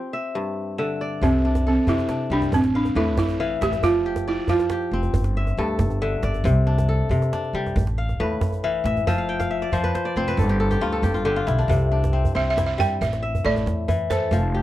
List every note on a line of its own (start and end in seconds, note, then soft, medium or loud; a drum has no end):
0.00 1.50 C4 medium
0.00 0.90 G4 medium
0.00 0.15 D5 medium
0.13 0.78 E5 medium
0.35 1.27 G2 medium
0.78 1.27 D3 medium
0.78 1.82 E5 medium
1.01 2.12 D5 medium
1.21 1.77 C2 medium
1.21 1.87 C3 medium
1.21 1.67 C4 medium
1.21 djembe bass medium
1.45 2.09 D4 medium
1.55 djembe slap soft
1.55 djembe tone soft
1.67 1.77 C4 medium
1.67 2.98 A4 medium
1.87 2.05 C3 medium
1.87 2.58 C3 medium
1.87 2.33 E4 medium
1.87 djembe slap soft
1.87 djembe bass medium
1.98 djembe slap soft
1.98 djembe tone medium
2.09 3.78 D4 soft
2.09 djembe slap medium
2.20 djembe slap soft
2.30 2.49 C2 medium
2.30 2.58 G3 medium
2.30 2.42 D4 medium
2.42 djembe tone medium
2.52 2.89 A1 medium
2.52 2.74 C4 medium
2.52 djembe bass medium
2.64 djembe slap medium
2.75 2.98 D4 medium
2.75 3.40 F5 medium
2.85 djembe tone soft
2.95 3.17 E2 medium
2.95 3.89 A2 medium
2.95 3.06 E4 medium
2.95 4.20 B4 medium
3.07 djembe slap soft
3.17 3.54 A1 medium
3.17 3.63 E4 medium
3.17 djembe slap medium
3.17 djembe bass medium
3.28 djembe tone medium
3.40 3.89 E3 medium
3.40 4.40 F5 medium
3.61 3.82 A1 medium
3.61 3.85 G4 medium
3.61 4.55 E5 medium
3.61 djembe slap medium
3.72 djembe tone medium
3.82 4.38 F1 medium
3.82 4.48 F3 medium
3.82 4.29 F4 medium
3.82 djembe bass medium
4.06 4.71 G4 medium
4.16 djembe slap medium
4.16 djembe tone medium
4.28 4.38 E4 medium
4.28 5.38 D5 medium
4.48 4.67 F2 medium
4.48 5.20 F3 medium
4.48 5.11 F4 medium
4.48 djembe slap soft
4.48 djembe bass medium
4.59 djembe slap soft
4.59 djembe tone medium
4.70 6.13 G4 medium
4.70 djembe slap medium
4.81 djembe slap soft
4.91 5.10 F1 medium
4.91 6.73 C4 medium
5.03 djembe tone medium
5.14 5.51 G1 medium
5.14 djembe bass medium
5.24 djembe slap medium
5.37 6.01 E5 medium
5.47 djembe tone medium
5.57 5.80 D2 medium
5.57 6.50 G2 medium
5.57 6.88 A4 medium
5.68 djembe slap soft
5.79 6.16 G1 medium
5.79 djembe slap medium
5.79 djembe bass medium
5.90 djembe tone soft
6.02 6.50 D3 medium
6.02 7.05 E5 medium
6.02 djembe slap soft
6.22 6.45 G1 medium
6.22 7.34 D5 medium
6.22 djembe slap medium
6.34 djembe tone soft
6.44 7.00 C2 loud
6.44 7.09 C3 medium
6.44 djembe bass medium
6.67 7.32 D4 medium
6.78 djembe slap medium
6.78 djembe tone soft
6.89 8.20 A4 medium
7.09 7.28 C3 medium
7.09 7.81 C3 medium
7.09 djembe slap soft
7.09 djembe bass medium
7.22 djembe slap soft
7.22 djembe tone medium
7.33 9.01 D4 medium
7.33 djembe slap medium
7.44 djembe slap soft
7.53 7.72 C2 medium
7.53 7.81 G3 medium
7.66 djembe tone soft
7.76 8.13 A1 loud
7.76 djembe bass medium
7.87 djembe slap soft
7.98 8.64 F5 medium
8.09 djembe tone soft
8.20 8.41 E2 medium
8.20 9.12 A2 medium
8.20 9.43 B4 medium
8.31 djembe slap soft
8.41 8.78 A1 medium
8.41 djembe slap medium
8.41 djembe bass medium
8.52 djembe tone soft
8.63 9.12 E3 medium
8.63 9.18 F5 medium
8.63 djembe slap soft
8.84 9.07 A1 medium
8.84 9.07 E5 medium
8.84 djembe slap medium
8.97 djembe tone soft
9.07 9.62 F1 loud
9.07 9.72 F3 medium
9.07 9.46 E5 medium
9.07 djembe bass medium
9.18 9.39 F5 medium
9.29 10.22 G5 medium
9.40 10.39 F5 medium
9.40 djembe slap medium
9.40 djembe tone medium
9.51 9.79 E5 medium
9.62 10.05 D5 medium
9.72 9.91 F2 medium
9.72 10.44 F3 medium
9.72 9.94 C5 medium
9.72 djembe bass medium
9.84 10.23 B4 medium
9.84 djembe tone soft
9.95 10.17 C5 medium
9.95 djembe slap medium
10.05 11.16 D5 medium
10.16 10.35 F1 medium
10.16 11.97 C4 medium
10.16 11.36 C5 medium
10.28 11.51 B4 medium
10.28 djembe tone medium
10.37 10.74 G1 loud
10.37 10.59 A4 medium
10.37 djembe bass medium
10.49 10.70 G4 medium
10.49 djembe slap soft
10.60 10.92 A4 medium
10.71 11.03 G4 medium
10.71 djembe tone soft
10.81 11.04 D2 medium
10.81 11.75 G2 medium
10.81 11.14 F4 medium
10.92 12.24 A4 medium
10.92 djembe slap soft
11.02 11.40 G1 medium
11.02 11.25 G4 medium
11.02 djembe slap medium
11.02 djembe bass medium
11.14 11.36 F4 medium
11.14 djembe tone soft
11.25 11.75 D3 medium
11.25 12.67 G4 medium
11.36 12.63 F4 medium
11.36 djembe slap soft
11.47 11.66 B1 medium
11.47 12.56 E4 medium
11.47 djembe slap medium
11.59 11.91 D4 medium
11.59 djembe tone soft
11.68 12.24 C2 loud
11.68 13.06 C3 medium
11.68 djembe bass medium
11.92 13.60 D4 medium
12.04 djembe slap medium
12.04 djembe tone medium
12.13 12.35 C4 medium
12.25 djembe bass medium
12.35 12.72 C2 medium
12.35 14.15 C4 medium
12.35 12.49 E5 medium
12.50 12.65 E5 medium
12.57 14.14 E4 medium
12.57 djembe slap medium
12.57 djembe tone medium
12.66 12.79 E5 medium
12.78 12.97 G2 medium
12.78 13.06 G3 medium
12.78 13.02 G5 loud
12.78 djembe bass medium
13.01 13.38 A1 loud
13.01 13.42 E5 medium
13.01 djembe tone medium
13.13 djembe slap medium
13.22 14.26 E5 medium
13.35 djembe bass medium
13.44 13.63 A1 medium
13.44 14.37 A2 medium
13.44 14.07 D5 medium
13.56 djembe tone medium
13.66 14.32 E2 medium
13.66 djembe slap medium
13.88 14.37 E3 medium
13.88 djembe bass medium
14.10 14.62 A4 medium
14.10 14.51 C5 medium
14.10 djembe slap medium
14.10 djembe tone medium
14.31 14.62 F1 loud
14.31 14.62 F3 medium
14.31 djembe bass medium
14.55 14.62 G4 medium